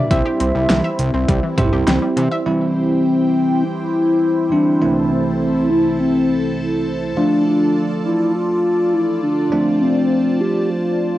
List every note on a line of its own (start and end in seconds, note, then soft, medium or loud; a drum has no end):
0.00 2.42 G3 medium
0.00 1.88 E5 loud
0.11 0.23 C2 loud
0.11 2.44 C4 medium
0.11 2.44 E4 medium
0.11 1.55 E4 medium
0.11 1.55 G4 medium
0.11 1.55 C5 medium
0.11 0.24 E5 loud
0.11 kick loud
0.11 closed hi-hat medium
0.26 0.39 G4 medium
0.40 0.52 C2 loud
0.40 0.53 C4 medium
0.40 closed hi-hat medium
0.55 0.67 C2 loud
0.55 0.68 G3 medium
0.69 0.82 C2 loud
0.69 0.83 E3 medium
0.69 snare loud
0.69 closed hi-hat medium
0.84 0.97 E5 medium
0.99 1.11 C2 loud
0.99 closed hi-hat medium
1.14 1.26 C2 loud
1.14 1.27 C4 medium
1.29 1.40 C2 loud
1.29 1.42 G3 medium
1.29 kick medium
1.29 closed hi-hat medium
1.43 1.56 E3 medium
1.58 1.70 C2 loud
1.58 2.45 E4 medium
1.58 2.46 G4 medium
1.58 2.46 C5 medium
1.58 1.71 E5 medium
1.58 kick loud
1.58 closed hi-hat medium
1.58 mid tom loud
1.73 1.85 C2 loud
1.73 1.86 G4 medium
1.87 1.99 C2 loud
1.87 2.01 C4 medium
1.87 snare loud
1.87 closed hi-hat medium
2.02 2.15 G3 medium
2.17 2.29 C3 loud
2.17 2.30 E3 medium
2.17 closed hi-hat medium
2.31 2.45 E5 medium
2.46 4.48 E3 medium
2.46 4.48 G3 medium
2.46 2.73 C4 loud
2.46 4.48 C4 medium
2.46 7.13 E4 medium
2.46 4.48 E4 medium
2.46 4.79 G4 medium
2.46 7.13 C5 medium
2.46 4.79 G5 medium
2.76 3.65 C4 loud
3.64 4.53 E4 loud
4.52 4.80 E3 medium
4.52 4.82 G3 soft
4.52 4.80 C4 soft
4.52 5.13 D4 loud
4.52 4.80 E4 medium
4.82 7.13 C2 medium
4.82 7.14 C3 medium
4.82 7.13 E3 medium
4.82 7.13 A3 medium
4.82 7.13 C4 medium
4.82 7.13 E4 medium
4.82 9.48 A4 medium
4.82 9.48 A5 medium
5.11 5.69 C4 loud
5.70 5.97 E4 loud
5.99 6.83 C4 medium
7.17 9.48 F3 medium
7.17 9.48 A3 medium
7.17 7.44 D4 loud
7.17 9.48 D4 medium
7.17 11.18 F4 medium
7.17 9.48 F4 medium
7.17 11.18 D5 medium
7.46 8.01 D4 loud
8.05 8.33 E4 loud
8.35 8.95 F4 loud
8.93 9.24 E4 loud
9.23 9.81 D4 loud
9.52 11.18 F3 medium
9.52 11.18 A3 medium
9.52 11.18 C4 medium
9.52 11.18 D4 medium
9.52 11.18 C5 medium
9.52 11.18 A5 medium
9.82 10.42 C4 loud
10.41 10.72 G4 loud
10.70 11.18 F4 loud